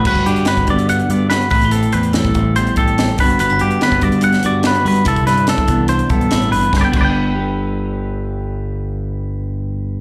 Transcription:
Already playing: D3
0.05 G1 G2 F#4 B4, kick, crash
0.15 G1, kick, closed hi-hat
0.26 G2 D4 G4, closed hi-hat
0.36 closed hi-hat
0.45 B4, snare, closed hi-hat
0.57 G1, kick, closed hi-hat
0.67 G2 D3 B3 D5, kick, closed hi-hat
0.79 closed hi-hat
0.89 D4 F#5, closed hi-hat
0.99 closed hi-hat
1.09 G2 B3 D5, closed hi-hat
1.30 F#4 B4, snare, closed hi-hat
1.41 closed hi-hat
1.50 A1 A2 E4 B4, kick, open hi-hat
1.62 G4, closed hi-hat
1.71 C4 A4, closed hi-hat
1.83 closed hi-hat
1.92 E2 B4, closed hi-hat
2.03 closed hi-hat
2.13 E3 G3 A4, snare, closed hi-hat
2.25 A1, kick, closed hi-hat
2.34 A1 C4, kick, closed hi-hat
2.56 E2 G3 C5, closed hi-hat
2.67 closed hi-hat
2.76 A1 G4 A4, kick, closed hi-hat
2.88 closed hi-hat
2.98 C4, snare, closed hi-hat
3.08 closed hi-hat
3.18 G1 G2 D3 B3 D4 B4, kick, open hi-hat
3.22 F#4
3.29 closed hi-hat
3.39 G1 B3 B4, closed hi-hat
3.49 G1 D4, closed hi-hat
3.59 G2 G4, closed hi-hat
3.71 closed hi-hat
3.81 D3 B3 B4, snare, closed hi-hat
3.92 G1, kick, closed hi-hat
4.01 G2 D4 D5, kick, closed hi-hat
4.12 closed hi-hat
4.21 G2 B3 F#5, closed hi-hat
4.33 snare, closed hi-hat
4.43 G2 F#4 D5, closed hi-hat
4.63 D4 B4, snare, closed hi-hat
4.75 closed hi-hat
4.85 G2 F#4 B4, open hi-hat
4.96 closed hi-hat
5.04 C2 C3 E4 A4, kick, closed hi-hat
5.16 kick, closed hi-hat
5.26 G2 D4 B4, snare, closed hi-hat
5.37 closed hi-hat
5.47 A4, snare, closed hi-hat
5.57 C2, kick, closed hi-hat
5.67 C2 E3 B3, kick, closed hi-hat
5.88 D4 C5, closed hi-hat
5.99 closed hi-hat
6.10 B1 G2 B3 A4, kick, closed hi-hat
6.21 closed hi-hat
6.31 A1 E4, snare, closed hi-hat
6.42 closed hi-hat
6.51 G1 D4 B4, open hi-hat
6.63 closed hi-hat
6.72 G1 G2, kick, snare
6.77 D3 B4
6.81 B3 D5 G5
6.86 D4
6.92 G1 G2 F#4, kick, crash
6.96 D3 B4
7.01 B3 D5 G5
7.08 D4
7.35 G4
7.41 B4

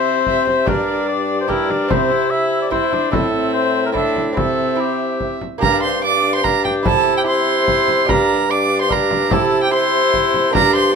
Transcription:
Already playing: C3 C4 E4 G4 C5 E5
0.26 E5, frame drum
0.47 E5, frame drum
0.66 G2 D4 G4 A#4 D5, frame drum
0.87 D5
1.09 D5
1.41 C5
1.48 D4 E4 G4 A#4, frame drum
1.70 D4, frame drum
1.88 C3 C4 E4 C5 E5, frame drum
2.11 E4
2.31 E4 E5
2.62 D5
2.70 C4 E4 C5 E5, frame drum
2.92 D4, frame drum
3.11 A2 C4 E4 A4 E5, frame drum
3.34 C4
3.53 C5
3.86 A#4
3.92 C4 D4 E4 A4 E5, frame drum
4.16 frame drum
4.33 C4 E4
4.37 C3 C4 A4 E5, frame drum
4.75 C4 E4
4.80 G4
5.20 frame drum
5.41 frame drum
5.58 G2 A#3 D4 G4 A#5
5.62 G2 D4 A#4, frame drum
5.83 C5 C6
6.04 D4 D5 D6
6.35 C5 C6
6.44 D4 A#4 A#5, frame drum
6.65 G4 G5, frame drum
6.83 C3 E4 G4 A4 A5, frame drum
7.17 G4 G5
7.24 E4 G4 C6
7.29 C5
7.68 frame drum
7.88 frame drum
8.05 G2 D4 G4 A#4, frame drum
8.10 D4 A#5
8.50 D4 D5 D6
8.81 C5 C6
8.89 D4 G4 A#4 A#5, frame drum
9.11 frame drum
9.30 C3 E4 G4 A4 A5, frame drum
9.62 G4 G5
9.71 E4 G4 C5 C6
10.14 frame drum
10.34 frame drum
10.51 A#3 D4 G4
10.55 G2 D4 A#4 A#5, frame drum
10.75 C5 C6

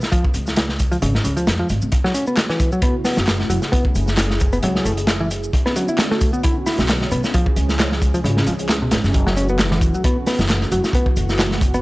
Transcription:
0.01 snare, shaker
0.12 F3, kick, closed hi-hat, shaker
0.25 kick
0.34 C#2, closed hi-hat, shaker
0.47 snare, shaker
0.56 snare, closed hi-hat, shaker
0.69 snare
0.79 kick, closed hi-hat, shaker
0.92 F3, closed hi-hat, shaker
1.02 G#1 C#3, closed hi-hat, shaker
1.15 snare
1.24 C#2 C#3, closed hi-hat, shaker
1.37 F3, closed hi-hat, shaker
1.47 F2, snare, closed hi-hat, shaker
1.59 F3
1.69 G#1, closed hi-hat, shaker
1.82 C#2, shaker
1.92 C#3 A3 E4 F#4, kick, closed hi-hat, shaker
2.04 F#3, snare
2.14 C#4, closed hi-hat, shaker
2.27 B3, shaker
2.37 snare, clap, closed hi-hat, shaker
2.49 E3, snare
2.60 kick, closed hi-hat, shaker
2.72 F#3, shaker
2.82 B3, kick, closed hi-hat, shaker
3.04 B3, snare, open hi-hat, shaker
3.17 F#1, snare, shaker
3.27 snare, clap, closed hi-hat, shaker
3.40 snare
3.50 F#1 F#3, closed hi-hat, shaker
3.62 snare, shaker
3.72 B3 G#4, kick, closed hi-hat, shaker
3.85 kick
3.95 F#1, closed hi-hat, shaker
4.07 snare, shaker
4.17 snare, clap, closed hi-hat, shaker
4.30 snare
4.40 kick, closed hi-hat, shaker
4.52 B3, closed hi-hat, shaker
4.63 C#2 F#3, closed hi-hat, shaker
4.75 snare
4.85 F#1 A3, closed hi-hat, shaker
4.97 closed hi-hat, shaker
5.07 snare, clap, closed hi-hat, shaker
5.21 E3
5.31 closed hi-hat, shaker
5.43 shaker
5.53 D3 B3 C#4 F#4, kick, closed hi-hat, shaker
5.66 B3, snare
5.76 F#3, closed hi-hat, shaker
5.88 E4, shaker
5.98 snare, clap, closed hi-hat, shaker
6.11 A3, snare
6.21 kick, closed hi-hat, shaker
6.33 B3, shaker
6.43 E4, kick, closed hi-hat, shaker
6.66 E4, snare, open hi-hat, shaker
6.78 B1, snare, shaker
6.89 snare, clap, closed hi-hat, shaker
7.01 snare
7.11 B1 B3, closed hi-hat, shaker
7.24 snare, shaker
7.34 F3 G#3 G#4, kick, closed hi-hat, shaker
7.46 kick
7.56 C#2, closed hi-hat, shaker
7.69 snare, shaker
7.79 snare, clap, closed hi-hat, shaker
7.92 snare
8.02 kick, closed hi-hat, shaker
8.14 F3, closed hi-hat, shaker
8.24 G#1 C#3, closed hi-hat, shaker
8.37 snare
8.46 C#2 F3, closed hi-hat, shaker
8.59 closed hi-hat, shaker
8.69 snare, clap, closed hi-hat, shaker
8.82 B2
8.91 G#1, snare, closed hi-hat, shaker
9.04 F#1, snare, shaker
9.14 E3 A3 F#4, kick, closed hi-hat, shaker
9.27 F#3, snare
9.37 C#4, closed hi-hat, shaker
9.49 B3, shaker
9.59 snare, clap, closed hi-hat, shaker
9.71 E3, snare
9.81 kick, closed hi-hat, shaker
9.94 F#3, shaker
10.04 B3, kick, closed hi-hat, shaker
10.27 B3, snare, open hi-hat, shaker
10.39 F#1, snare, shaker
10.49 snare, clap, closed hi-hat, shaker
10.61 snare
10.72 F#1 F#3, closed hi-hat, shaker
10.84 snare, shaker
10.93 B3, kick, closed hi-hat, shaker
11.06 kick
11.17 F#1, closed hi-hat, shaker
11.29 snare, shaker
11.39 snare, clap, closed hi-hat, shaker
11.51 snare
11.61 kick, closed hi-hat, shaker
11.74 B3, closed hi-hat, shaker

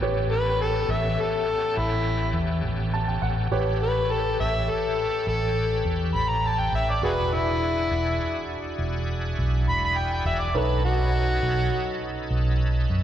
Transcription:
0.00 A1 B3 C#4 G4 A4 B4 C#5
0.32 B4
0.61 A4
0.89 A1 E5
1.21 A4
1.77 A1 E4
2.33 E2
2.63 A1
2.94 A5
3.08 G5
3.22 A1 F#5
3.51 A1 C#4 G4 A4 B4 C#5
3.83 B4
4.12 A4
4.40 A1 E5
4.70 A4
5.27 A1 A4
5.85 E2
6.14 A1 B5
6.29 A#5
6.47 A5
6.60 G5
6.72 A1 E5
6.91 D5
7.01 E1 D4 E4 F#4 G#4 B4 D5
7.34 E4
7.91 E1
8.79 E1
9.39 B1
9.68 E1 B5
9.85 B5
9.97 G5
10.13 G5
10.25 E1 E5
10.40 D5
10.54 B1 C#4 D#4 A4 B4 C#5
10.85 F#4
11.43 B1
12.31 B1
12.90 F#2

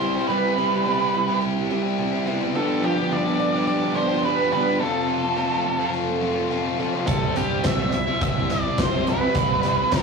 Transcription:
Already playing: C3 G3 E4 C5
0.01 C3 G3 C4 E4 G4
0.15 G3 C4 E4 G4
0.28 C3 G3 C4 E4 G4 B4
0.43 G3 E4
0.56 G3 C4 E4 G4
0.71 G3 E4
0.84 C3 G3 C4 E4 G4
0.98 C4 E4 G4
1.13 C3 G3 E4, muted overdriven electric guitar stroke
1.27 G3 C4 E4 G4
1.42 G4
1.56 G3 E4
1.70 C3 G3 C4 E4 G4
1.83 C4 E4 G4
1.88 G3
1.98 C3 G3 C4 E4 G4
2.11 C4 E4 G4
2.26 C3 G3 B3 C4 E4 G4
2.40 G3 B3 C4 E4 G4
2.54 G2 D3 F3 G3 B3 D4 F4 G4 A4
2.69 F3 B3 F4
2.81 F3 B3 D4 G4
2.96 F3 B3 F4
3.11 G2 D3 F3 B3 D4 F4 G4 D5
3.25 F3 B3 D4 G4
3.38 D3 F3 B3 D4 F4, muted overdriven electric guitar stroke
3.52 F3 B3 D4 F4 G4
3.67 G4 D5
3.80 F3 B3 F4
3.94 D3 F3 B3 D4 F4 G4 C5
4.08 F3 B3 D4 F4 G4
4.22 G2 D3 F3 B3 D4 F4 G4 B4
4.36 F3 B3 D4 G4
4.50 D3 F3 G3 B3 D4 F4 G4 B4
4.55 G2
4.65 F3 B3 D4 F4 G4
4.79 F2 C3 F3 A3 C4 F4 A4
4.95 A3 C4
5.06 F3 A3 C4 F4
5.23 A3 C4
5.36 F2 C3 F3 A3 C4 F4
5.50 F3 A3 C4 F4
5.64 F3 A3 C4, muted overdriven electric guitar stroke
5.79 F3 A3 C4 F4
5.94 A4
6.07 A3 C4
6.21 F3 A3 C4 F4
6.35 F3 A3 C4 F4
6.50 F2 C3 F3 A3 C4 F4
6.64 F3 A3 C4 F4
6.78 F2 C3 F3 A3 C4 E4 F4 A4
6.91 F3 A3 C4 E4 F4
7.06 C2 C3 G3 C4 E4 A4, kick, closed hi-hat, tambourine
7.21 G3 E4
7.35 G2 C3 G3 C4 E4 G4, closed hi-hat, tambourine
7.49 G3 E4
7.63 C2 C3 G3 C4 E4 E5, kick, snare, closed hi-hat, tambourine
7.78 G3 C4 E4
7.91 C3 G3 E4 E5, muted overdriven electric guitar stroke, closed hi-hat, tambourine
8.07 G3 C4 E4
8.21 C2 G4 E5, kick, closed hi-hat
8.35 G3 E4
8.50 C3 G3 C4 E4 D5, closed hi-hat, tambourine
8.65 G3 C4 E4
8.78 C2 C3 G3 C4 E4 C5, kick, snare, closed hi-hat, tambourine
8.93 G3 C4 E4
9.07 C3 G3 C4 E4 G4 B4, closed hi-hat
9.22 G3 C4 E4
9.35 C2 C3 G3 C4 E4, kick, closed hi-hat, tambourine
9.50 G3
9.63 C2 C3 G3 C4 E4, closed hi-hat, tambourine
9.77 G3 E4
9.91 C3 G3 C4 E4, kick, snare, closed hi-hat, tambourine

